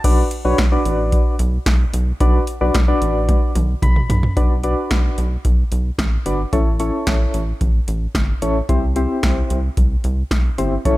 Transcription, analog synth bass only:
0.04 0.23 B1 loud
0.45 0.54 B1 medium
0.58 0.77 B1 loud
0.85 1.14 A1 medium
1.39 1.58 B1 loud
1.66 1.85 B1 loud
1.93 2.12 B1 loud
2.21 2.39 B1 loud
2.61 2.70 B1 medium
2.75 2.94 B1 loud
3.02 3.30 A1 medium
3.56 3.74 B1 loud
3.82 4.01 B1 loud
4.10 4.29 B1 loud
4.37 4.75 B1 loud
4.91 5.10 B1 medium
5.18 5.37 B1 loud
5.45 5.64 B1 loud
5.72 5.91 B1 loud
5.99 6.18 A1 medium
6.26 6.45 G1 medium
6.53 6.91 A1 loud
7.07 7.26 A1 loud
7.34 7.53 A1 loud
7.61 7.80 A1 loud
7.88 8.07 A1 loud
8.15 8.34 G1 medium
8.42 8.61 A1 medium
8.69 9.07 C2 loud
9.23 9.42 C2 loud
9.50 9.69 C2 loud
9.77 9.96 C2 medium
10.04 10.23 C2 loud
10.31 10.50 B1 medium
10.58 10.77 G1 loud
10.85 10.97 A1 loud

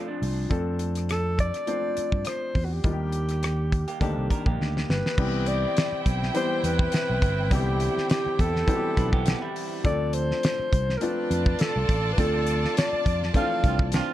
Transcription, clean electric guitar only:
0.08 0.49 F3 soft
0.08 0.48 D4 medium
3.88 4.01 A#3 medium
3.88 4.00 G4 medium
4.01 4.29 C4 medium
4.01 4.29 A4 medium
4.31 4.46 D4 soft
4.31 4.45 A#4 medium
4.47 5.15 A#3 medium
4.47 5.15 G4 medium
8.97 9.12 D4 medium
8.97 9.12 B4 medium
9.12 9.41 B3 medium
9.12 9.40 G4 medium
9.42 9.82 G3 medium
9.42 9.82 E4 medium

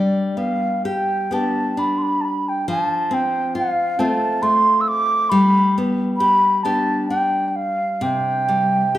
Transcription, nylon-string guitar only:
0.00 2.68 G3 medium
0.00 1.32 D4 soft
0.00 0.85 G4 soft
0.37 1.30 B3 soft
0.85 1.31 G4 medium
1.31 2.77 B3 soft
1.31 1.76 D4 soft
1.31 2.78 G4 soft
1.77 2.78 D4 soft
2.68 5.31 F3 medium
3.11 3.98 C4 soft
3.55 3.99 F4 medium
3.99 4.41 A3 soft
3.99 5.40 C4 medium
3.99 5.41 F4 medium
4.43 5.40 A3 medium
5.32 8.48 G3 medium
5.78 6.64 B3 soft
6.20 6.65 G4 medium
6.65 8.12 B3 soft
6.65 7.10 D4 soft
6.65 8.94 G4 medium
7.10 8.98 D4 soft
8.01 8.98 C3 medium
8.48 8.98 G3 soft
8.95 8.98 G4 medium

